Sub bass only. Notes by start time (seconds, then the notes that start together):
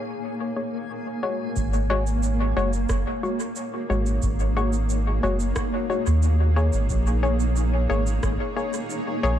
1.56 G#1
2.57 F#1
2.90 F#1
3.90 G#1
4.23 G#1
5.23 F#1
6.07 D#2
6.74 G#1
6.90 A#1
7.90 G#1
8.23 G#1
9.24 A#1